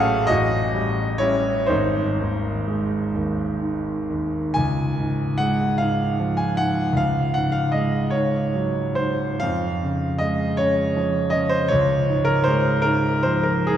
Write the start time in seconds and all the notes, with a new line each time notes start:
Already playing: A1 F#3 A3 C#4 G#4 A4 C5 F5 F#5 G#5
0.27 A1 F#4 D#5
0.74 G3
1.18 G3 C#4 E4 C#5
1.67 G#1 D#4 C5
2.20 D#2
2.68 G#3
3.15 D#2
3.62 D#3
4.10 D#2
4.54 C#2 G#5
4.99 G#2
5.38 G#3 F#5
5.78 G#2 F5
6.20 F3
6.37 G#5
6.57 G#2 F#5
6.93 C#2 F5
7.34 G#2 F#5
7.52 F5
7.72 G#3 D#5
8.10 G#2 C#5
8.54 F#3
8.95 G#2 C5
9.40 F2 F5
9.83 C#3
10.19 G#3 D#5
10.57 C#3 C#5
10.97 F3
11.30 C#3 D#5
11.49 C5
11.68 C#2 C#5
12.09 G#2
12.25 A#4
12.44 G#3 C5
12.82 G#2 A#4
13.23 F3 C5
13.43 A#4
13.67 G#2 G#4